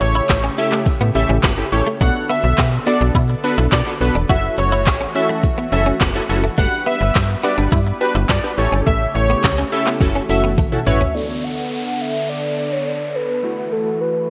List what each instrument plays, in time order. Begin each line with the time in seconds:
Already playing: analog synth pad C#3 A3 G4, analog polysynth C#4 E4 G4 A4
0.01 fm bass A1, analog synth lead C#5, muted clean electric guitar stroke, open hi-hat, tambourine, shaker
0.15 clean electric guitar E4, shaker
0.29 fm bass A1, kick, snare, clap, closed hi-hat, tambourine, shaker
0.44 clean electric guitar C#4, shaker
0.58 analog polysynth C#4 E4 G4 A4, analog synth lead E5, muted clean electric guitar stroke, open hi-hat, tambourine, shaker
0.72 clean electric guitar A3, clap, shaker
0.86 kick, closed hi-hat, tambourine, shaker
1.01 fm bass A2, clean electric guitar B3, shaker
1.15 fm bass A1, analog polysynth C#4 E4 G4 A4, analog synth lead E5, muted clean electric guitar stroke, open hi-hat, tambourine, shaker
1.29 fm bass A1, clean electric guitar C#4, shaker
1.43 fm bass G1, clean electric guitar B3, kick, snare, clap, closed hi-hat, tambourine, shaker
1.58 analog polysynth C#4 E4 G4 A4, shaker
1.72 fm bass A1, analog polysynth C#4 E4 G4 A4, analog synth lead C#5, muted clean electric guitar stroke, open hi-hat, tambourine, shaker
1.87 clean electric guitar A3, shaker
2.01 fm bass B1, analog synth pad D3 B3 A4, clean electric guitar A3, analog polysynth B3 D4 F#4 A4, analog synth lead F#5, kick, closed hi-hat, tambourine, shaker
2.15 shaker
2.29 clean electric guitar B3, analog synth lead E5, open hi-hat, tambourine, shaker
2.44 fm bass B1, muted clean electric guitar stroke, shaker
2.58 fm bass B2, muted clean electric guitar stroke, kick, snare, clap, closed hi-hat, tambourine, shaker
2.73 shaker
2.86 analog polysynth B3 D4 F#4 A4, clean electric guitar B3, analog synth lead D5, open hi-hat, tambourine, shaker
3.01 fm bass B1, clean electric guitar D4, shaker
3.15 fm bass B2, clean electric guitar E4, kick, closed hi-hat, tambourine, shaker
3.29 muted clean electric guitar stroke, shaker
3.44 analog polysynth B3 D4 F#4 A4, analog synth lead B4, open hi-hat, tambourine, shaker
3.58 fm bass B1, clean electric guitar E4, shaker
3.72 fm bass B2, clean electric guitar D4, analog synth lead D5, kick, snare, clap, closed hi-hat, tambourine, shaker
3.86 analog polysynth B3 D4 F#4 A4, muted clean electric guitar stroke, shaker
4.01 fm bass B1, analog polysynth B3 D4 F#4 A4, analog synth lead B4, open hi-hat, tambourine, shaker
4.15 fm bass E1, clean electric guitar D4, shaker
4.29 fm bass F#1, analog synth pad E3 A3 F#4, analog polysynth C#4 E4 F#4 A4, clean electric guitar F#4, analog synth lead E5, kick, closed hi-hat, shaker
4.44 shaker
4.58 fm bass F#1, analog synth lead C#5, muted clean electric guitar stroke, open hi-hat, tambourine, shaker
4.72 clean electric guitar E4, shaker
4.86 fm bass A1, kick, snare, clap, closed hi-hat, tambourine, shaker
5.01 clean electric guitar C#4, shaker
5.15 analog polysynth C#4 E4 F#4 A4, analog synth lead E5, muted clean electric guitar stroke, open hi-hat, tambourine, shaker
5.29 clean electric guitar A3, shaker
5.43 kick, closed hi-hat, tambourine, shaker
5.58 clean electric guitar B3, shaker
5.72 fm bass F#1, analog polysynth C#4 E4 F#4 A4, analog synth lead E5, muted clean electric guitar stroke, open hi-hat, tambourine, shaker
5.86 clean electric guitar C#4, shaker
6.01 fm bass F#1, clean electric guitar B3, kick, snare, clap, closed hi-hat, tambourine, shaker
6.15 analog polysynth C#4 E4 F#4 A4, shaker
6.29 fm bass F#1, analog polysynth C#4 E4 F#4 A4, muted clean electric guitar stroke, open hi-hat, tambourine, shaker
6.44 clean electric guitar A3, shaker
6.58 fm bass G1, analog synth pad G3 B3 B4, clean electric guitar A3, analog polysynth D4 F#4 G4 B4, analog synth lead F#5, kick, closed hi-hat, tambourine, shaker
6.72 shaker
6.86 clean electric guitar B3, analog synth lead E5, open hi-hat, tambourine, shaker
7.01 fm bass G1, muted clean electric guitar stroke, shaker
7.15 fm bass G2, muted clean electric guitar stroke, kick, snare, clap, closed hi-hat, tambourine, shaker
7.30 shaker
7.44 clean electric guitar B3, analog polysynth D4 F#4 G4 B4, analog synth lead D5, open hi-hat, tambourine, shaker
7.58 fm bass G1, clean electric guitar D4, shaker
7.72 fm bass G2, clean electric guitar E4, kick, closed hi-hat, tambourine, shaker
7.87 muted clean electric guitar stroke, shaker
8.01 analog polysynth D4 F#4 G4 B4, analog synth lead B4, open hi-hat, tambourine, shaker
8.15 fm bass G1, clean electric guitar E4, shaker
8.29 fm bass G2, clean electric guitar D4, analog synth lead D5, kick, snare, clap, closed hi-hat, tambourine, shaker
8.43 analog polysynth D4 F#4 G4 B4, muted clean electric guitar stroke, shaker
8.57 fm bass A1, analog synth pad C#3 A3 G4, analog polysynth C#4 E4 G4 A4, analog synth lead C#5, open hi-hat, tambourine, shaker
8.72 fm bass G1, clean electric guitar C#4, shaker
8.86 fm bass A1, clean electric guitar A3, analog synth lead E5, kick, closed hi-hat, shaker
9.01 shaker
9.14 fm bass A1, analog synth lead C#5, muted clean electric guitar stroke, open hi-hat, shaker
9.29 clean electric guitar B3, shaker
9.44 fm bass C#2, kick, snare, clap, closed hi-hat, tambourine, shaker
9.58 clean electric guitar C#4, shaker
9.72 analog polysynth C#4 E4 G4 A4, analog synth lead E5, muted clean electric guitar stroke, open hi-hat, tambourine, shaker
9.87 clean electric guitar B3, clap, shaker
10.00 fm bass F#1, analog synth pad E3 A3 F#4, analog polysynth C#4 E4 F#4 A4, kick, closed hi-hat, tambourine, shaker
10.15 clean electric guitar C#4, shaker
10.29 fm bass F#1, analog polysynth C#4 E4 F#4 A4, analog synth lead E5, muted clean electric guitar stroke, open hi-hat, tambourine, shaker
10.44 clean electric guitar B3, shaker
10.58 fm bass A1, clean electric guitar A3, kick, closed hi-hat, high tom, tambourine, shaker
10.72 analog polysynth C#4 E4 F#4 A4, mid tom, shaker
10.86 fm bass A1, analog polysynth C#4 E4 F#4 B4, analog synth lead C#5, soft synth lead E5, muted clean electric guitar stroke, mid tom, open hi-hat, tambourine, shaker
11.01 clean electric guitar C#4, floor tom, shaker
11.15 analog synth pad D3 B3 A4, analog polysynth B3 D4 A4, soft synth lead D5, downlifter
11.44 soft synth lead F#5
12.01 soft synth lead E5
12.29 soft synth lead D5
12.58 soft synth lead D5
12.72 soft synth lead C#5
12.87 soft synth lead D5
13.15 soft synth lead B4
13.43 analog synth pad E3 A3 F#4, analog polysynth A3 E4 F#4
13.72 soft synth lead A4
14.01 soft synth lead B4